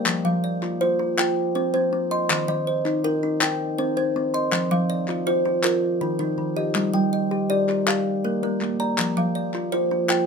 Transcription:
0.00 0.25 A#4 medium
0.00 0.25 D5 medium
0.06 0.44 F3 medium
0.06 clap medium
0.25 0.62 F3 medium
0.25 0.81 F5 medium
0.44 1.00 D5 medium
0.62 0.98 F4 medium
0.62 clap soft
0.81 1.17 F4 medium
0.81 1.37 C5 medium
0.99 1.18 F4 medium
1.18 1.37 F4 medium
1.18 1.74 G5 medium
1.18 clap medium
1.55 1.91 C4 medium
1.55 2.11 C5 medium
1.74 2.11 C4 medium
1.74 2.30 C5 medium
1.93 2.30 C4 medium
2.11 2.48 D#5 medium
2.11 2.49 C6 medium
2.30 2.67 D#3 medium
2.30 clap medium
2.48 2.86 D#3 medium
2.48 3.04 D#5 medium
2.67 3.23 C5 medium
2.85 3.22 D#4 medium
2.85 clap soft
3.04 3.40 D#4 medium
3.04 3.60 A#4 medium
3.23 3.42 D#4 medium
3.41 3.60 D#4 medium
3.41 3.97 G5 medium
3.41 clap medium
3.78 4.15 C4 medium
3.78 4.34 C5 medium
3.97 4.34 C4 medium
3.97 4.53 C5 medium
4.16 4.53 C4 medium
4.34 4.71 D#5 medium
4.34 4.71 C6 medium
4.52 4.90 F3 medium
4.52 clap medium
4.71 5.08 F3 medium
4.71 5.27 F5 medium
4.90 5.46 D5 medium
5.08 5.44 F4 medium
5.08 clap soft
5.27 5.63 F4 medium
5.27 5.83 C5 medium
5.45 5.64 F4 medium
5.63 5.83 F4 medium
5.63 6.20 A#4 medium
5.63 clap medium
6.01 6.37 D#3 medium
6.01 6.57 D#4 medium
6.19 6.57 D#3 medium
6.19 6.76 D#4 medium
6.38 6.75 D#3 medium
6.56 6.94 G4 medium
6.56 6.94 D#5 medium
6.75 7.13 G3 medium
6.75 clap medium
6.93 7.31 G3 medium
6.93 7.50 G5 medium
7.13 7.69 D#5 medium
7.31 7.68 G4 medium
7.50 7.86 G4 medium
7.50 8.06 D5 medium
7.69 7.87 G4 medium
7.69 clap soft
7.87 8.06 G4 medium
7.87 8.43 F5 medium
7.87 clap medium
8.24 8.60 A#3 medium
8.24 8.80 A#4 medium
8.43 8.80 A#3 medium
8.43 8.99 A#4 medium
8.61 8.98 A#3 medium
8.61 clap soft
8.80 9.17 D5 medium
8.80 9.17 A#5 medium
8.98 9.36 F3 medium
8.98 clap medium
9.17 9.54 F3 medium
9.17 9.73 F5 medium
9.35 9.91 D5 medium
9.54 9.90 F4 medium
9.54 clap soft
9.72 10.08 F4 medium
9.72 10.26 C5 medium
9.91 10.10 F4 medium
10.09 10.26 F4 medium
10.09 10.26 G5 medium
10.09 clap medium

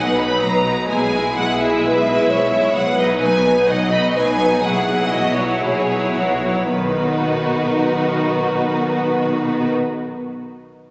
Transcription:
0.00 0.36 B1 soft
0.00 0.37 B2 medium
0.00 0.17 F#3 soft
0.00 0.17 D#4 soft
0.00 0.87 B4 soft
0.00 0.19 F#5 medium
0.18 0.64 F#3 soft
0.18 0.64 D#4 soft
0.18 0.42 B5 medium
0.42 0.83 B1 soft
0.42 0.84 B2 soft
0.42 0.89 A#5 medium
0.65 0.88 F#3 soft
0.65 0.88 D#4 soft
0.88 1.30 B1 medium
0.88 1.31 B2 soft
0.88 1.11 G#3 soft
0.88 1.11 E4 soft
0.88 1.81 G#4 soft
0.88 1.35 G#5 medium
1.12 1.58 G#3 soft
1.12 1.58 E4 soft
1.36 1.77 B1 soft
1.36 1.78 B2 soft
1.36 1.59 F#5 medium
1.59 2.05 G#3 soft
1.59 2.05 E4 soft
1.59 2.74 E5 medium
1.82 2.24 B1 soft
1.82 2.24 B2 soft
1.82 2.29 B4 soft
2.06 2.51 G#3 soft
2.06 2.51 E4 soft
2.29 2.70 B1 soft
2.29 2.70 B2 soft
2.29 2.75 C#5 soft
2.52 2.75 G#3 soft
2.52 2.75 E4 soft
2.76 3.16 B1 medium
2.76 3.16 B2 soft
2.76 3.69 B4 medium
2.76 2.99 F#5 medium
2.98 3.43 F#3 soft
2.98 3.44 D#4 soft
2.98 3.06 D#5 medium
3.21 3.63 B1 soft
3.21 3.63 B2 soft
3.21 3.67 G#5 medium
3.45 3.91 F#3 soft
3.45 3.91 D#4 soft
3.68 4.11 B1 medium
3.68 4.11 B2 soft
3.68 4.16 D#5 medium
3.68 3.92 F#5 medium
3.92 4.38 F#3 soft
3.92 4.38 D#4 soft
3.92 4.01 B5 medium
4.16 4.58 B1 soft
4.16 4.58 B2 soft
4.16 4.64 B4 soft
4.16 4.63 G#5 medium
4.39 4.62 F#3 soft
4.39 4.63 D#4 soft
4.63 5.07 B1 medium
4.63 5.07 B2 medium
4.63 4.87 F#3 soft
4.63 4.87 E4 soft
4.63 5.12 G#4 soft
4.63 5.13 F#5 medium
4.88 5.37 F#3 soft
4.88 5.37 E4 soft
5.11 5.57 B1 soft
5.11 5.57 B2 soft
5.11 5.64 F#4 soft
5.11 5.37 D#5 medium
5.36 5.89 F#3 soft
5.36 5.89 E4 soft
5.36 6.68 C#5 medium
5.63 6.10 B1 soft
5.63 6.10 B2 soft
5.63 6.16 G#4 soft
5.90 6.42 F#3 soft
5.90 6.42 E4 soft
6.16 6.63 B1 soft
6.16 6.63 B2 soft
6.16 6.42 F#4 soft
6.43 6.69 F#3 soft
6.43 6.69 E4 soft
6.68 9.73 B1 soft
6.68 9.73 B2 soft
6.68 9.73 D#3 soft
6.68 9.73 B3 soft
6.68 9.72 D#4 soft
6.68 9.73 F#4 soft
6.68 9.72 B4 soft

